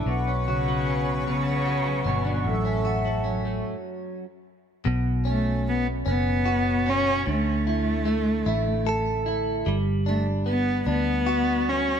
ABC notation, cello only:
X:1
M:6/8
L:1/8
Q:3/8=50
K:Bm
V:1 name="Cello"
z C,2 C,2 B,, | F,,3 z3 | z A, B, B,2 C | A,4- A, z |
z A, B, B,2 C |]